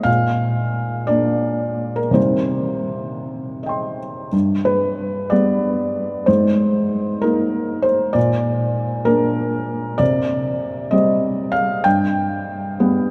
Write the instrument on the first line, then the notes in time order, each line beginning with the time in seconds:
felt piano
0.03 A#2 F5
1.07 A#3 D4 D5
1.96 A#4
2.11 C3 D#3 G3 C4 C5
3.63 D#5 G5
3.69 C6
4.32 G2
4.65 B4
5.30 G3 B3 D5
6.26 G#2 C5
7.22 A#3 D#4 A#4
7.82 C5
8.13 A#2 D5
9.05 A#3 D4 A#4
9.98 C3 D5
10.91 G3 C4 D#5
11.52 F5
11.84 G2 G5
12.80 G3 B3